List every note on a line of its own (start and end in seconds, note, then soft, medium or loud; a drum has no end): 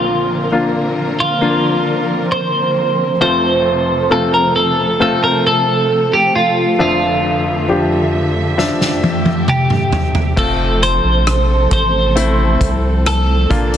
0.00 2.72 A#1 soft
0.00 2.72 A#2 soft
0.00 3.17 D3 medium
0.00 10.33 F3 medium
0.00 0.45 A#3 medium
0.00 3.17 A#3 medium
0.00 6.75 C4 medium
0.00 0.46 D4 medium
0.00 0.46 F4 medium
0.00 0.71 F4 medium
0.00 3.17 A#4 medium
0.52 1.37 A#3 soft
0.52 1.37 D4 soft
0.52 1.38 F4 medium
1.20 2.32 F4 medium
1.41 3.12 A#3 medium
1.41 3.12 D4 medium
1.41 3.12 F4 medium
2.32 3.20 C5 medium
3.20 6.75 F1 soft
3.20 6.75 F2 soft
3.20 6.76 C3 medium
3.20 10.33 A3 medium
3.20 4.06 A3 medium
3.20 4.06 C4 medium
3.20 4.06 F4 medium
3.20 8.54 A4 medium
3.20 4.12 C5 medium
4.10 4.95 A3 soft
4.10 4.96 C4 soft
4.10 4.96 F4 medium
4.10 4.33 A4 medium
4.34 4.55 A#4 medium
4.56 5.00 A4 medium
5.00 6.70 A3 medium
5.00 6.70 C4 medium
5.00 6.70 F4 medium
5.00 5.22 A4 medium
5.24 5.46 A#4 medium
5.47 6.15 A4 medium
6.14 6.35 G4 medium
6.36 6.80 F4 medium
6.79 10.33 F1 medium
6.79 10.34 F2 medium
6.79 10.34 D3 medium
6.79 7.64 F3 medium
6.79 7.64 D4 medium
6.79 9.45 F4 medium
6.79 10.34 E5 medium
6.79 7.65 E5 medium
7.69 8.54 F3 soft
7.69 8.54 D4 soft
7.69 8.54 G4 medium
8.58 10.28 F3 medium
8.58 10.28 D4 medium
8.58 10.36 G4 medium
8.58 10.29 E5 medium
8.58 snare soft
8.81 snare soft
9.04 high tom medium
9.26 high tom medium
9.48 10.41 G4 medium
9.48 mid tom medium
9.70 mid tom medium
9.92 floor tom medium
10.15 floor tom medium
10.36 11.01 F1 medium
10.36 13.47 C3 medium
10.36 13.77 F3 medium
10.36 12.07 A3 medium
10.36 13.47 A3 medium
10.36 13.77 C4 medium
10.36 12.07 C4 medium
10.36 12.08 F4 medium
10.36 13.47 A4 medium
10.36 10.83 A4 medium
10.36 kick medium
10.36 crash medium
10.83 11.68 C5 medium
10.83 closed hi-hat medium
11.04 11.68 A#1 medium
11.27 cross-stick medium
11.27 closed hi-hat medium
11.71 12.57 A1 medium
11.71 13.03 C5 medium
11.71 kick medium
11.71 closed hi-hat medium
12.15 13.50 A3 medium
12.15 13.50 C4 medium
12.15 13.51 E4 medium
12.15 closed hi-hat medium
12.61 13.47 C2 medium
12.61 kick medium
12.61 closed hi-hat medium
13.06 13.77 A4 medium
13.06 cross-stick medium
13.06 closed hi-hat medium
13.50 13.77 A#1 medium
13.50 13.77 A#2 soft
13.50 13.77 D3 medium
13.50 13.77 A#3 medium
13.50 13.77 D4 medium
13.50 13.77 F4 medium
13.50 13.77 D5 medium
13.50 kick medium
13.50 closed hi-hat medium
13.74 closed hi-hat soft